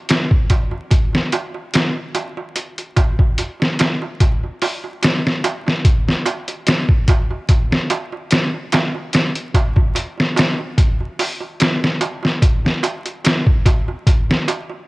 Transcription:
0.09 snare, closed hi-hat, darbuka tek
0.31 kick, darbuka tek
0.50 kick, closed hi-hat, darbuka tek
0.71 darbuka tek
0.91 kick, closed hi-hat, darbuka tek
1.13 snare, darbuka tek
1.32 closed hi-hat, darbuka tek
1.54 darbuka tek
1.74 snare, closed hi-hat, darbuka tek
1.95 darbuka tek
2.15 closed hi-hat, darbuka tek
2.37 darbuka tek
2.56 closed hi-hat, darbuka tek
2.78 closed hi-hat, darbuka tek
2.96 kick, closed hi-hat, darbuka tek
3.19 kick, darbuka tek
3.38 closed hi-hat, darbuka tek
3.60 snare, darbuka tek
3.79 snare, closed hi-hat, darbuka tek
4.02 darbuka tek
4.20 kick, closed hi-hat, darbuka tek
4.44 darbuka tek
4.62 open hi-hat, darbuka tek
4.84 darbuka tek
5.03 snare, closed hi-hat, darbuka tek
5.25 snare, darbuka tek
5.44 closed hi-hat, darbuka tek
5.67 snare, darbuka tek
5.85 kick, closed hi-hat, darbuka tek
6.08 snare, darbuka tek
6.26 closed hi-hat, darbuka tek
6.48 closed hi-hat, darbuka tek
6.67 snare, closed hi-hat, darbuka tek
6.88 kick, darbuka tek
7.08 kick, closed hi-hat, darbuka tek
7.31 darbuka tek
7.49 kick, closed hi-hat, darbuka tek
7.71 snare, darbuka tek
7.90 closed hi-hat, darbuka tek
8.13 darbuka tek
8.31 snare, closed hi-hat, darbuka tek
8.54 darbuka tek
8.72 snare, closed hi-hat, darbuka tek
8.95 darbuka tek
9.13 snare, closed hi-hat, darbuka tek
9.36 closed hi-hat, darbuka tek
9.54 kick, closed hi-hat, darbuka tek
9.76 kick, darbuka tek
9.95 closed hi-hat, darbuka tek
10.18 snare, darbuka tek
10.36 snare, closed hi-hat, darbuka tek
10.58 darbuka tek
10.78 kick, closed hi-hat, darbuka tek
11.00 darbuka tek
11.19 open hi-hat, darbuka tek
11.41 darbuka tek
11.60 snare, closed hi-hat, darbuka tek
11.82 snare, darbuka tek
12.01 closed hi-hat, darbuka tek
12.23 snare, darbuka tek
12.42 kick, closed hi-hat, darbuka tek
12.65 snare, darbuka tek
12.83 closed hi-hat, darbuka tek
13.06 closed hi-hat, darbuka tek
13.24 snare, closed hi-hat, darbuka tek
13.46 kick, darbuka tek
13.66 kick, closed hi-hat, darbuka tek
13.88 darbuka tek
14.07 kick, closed hi-hat, darbuka tek
14.29 snare, darbuka tek
14.48 closed hi-hat, darbuka tek
14.69 darbuka tek

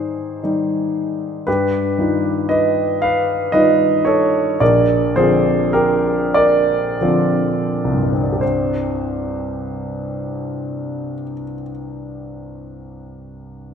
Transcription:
Already playing: G#2 D#3 G3 D#4 G#4 C5
0.43 D#3 G3 D#4
1.47 G2 G4 B4
1.98 D#3 G3 D#4 F4
2.49 B4 D#5
3.02 B4 F5
3.52 D#3 G3 D#4 F4 B4 D#5
4.05 A4 C#5
4.60 A#1 A#4 D5
5.16 D3 F3 C4 F4 G#4 C5
5.73 G4 A#4
6.34 A#4 D5
7.01 D3 F3 C4 F4
7.84 C2
7.93 G2
8.03 G3
8.13 C4
8.23 D4
8.32 G4
8.41 C5

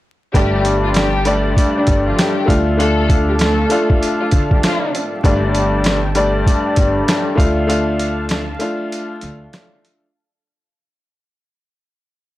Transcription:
0.34 G1 G2 G3 A3 D4 G4 A4 D5 G5 A5, kick, closed hi-hat
0.65 closed hi-hat
0.84 F3 F4
0.94 G3 G4, snare, closed hi-hat
1.25 G2 G3 A3 D4 D5, closed hi-hat
1.57 kick, closed hi-hat
1.77 D3 D4
1.87 G1, kick, closed hi-hat
2.05 F3 F4
2.17 G3 G4, snare, closed hi-hat
2.46 D2 A3 D4 F4 F5 A5, kick
2.50 closed hi-hat
2.77 A3 D4 F4 A4, closed hi-hat
3.10 kick, closed hi-hat
3.28 G3 G4
3.39 A3 A4, snare, closed hi-hat
3.69 A3 D4 F4, closed hi-hat
3.90 kick
4.03 closed hi-hat
4.20 F3 F4
4.31 D2, kick, closed hi-hat
4.51 G3 G4, kick
4.62 F3 F4, snare, closed hi-hat
4.95 closed hi-hat
5.24 G1 G2 G3 A3 D4 D5 G5 A5, kick, closed hi-hat
5.55 closed hi-hat
5.84 snare, closed hi-hat
6.15 G2 G3 A3 D4 D5, closed hi-hat
6.47 kick, closed hi-hat
6.76 G1, kick, closed hi-hat
7.08 snare, closed hi-hat
7.35 D2 A3 D4 F4 F5 A5, kick
7.40 closed hi-hat
7.67 A3 D4 F4, closed hi-hat
7.99 closed hi-hat
8.29 snare, closed hi-hat
8.59 A3 D4 F4, closed hi-hat
8.92 closed hi-hat
9.21 D2, closed hi-hat
9.53 snare, closed hi-hat
9.85 closed hi-hat

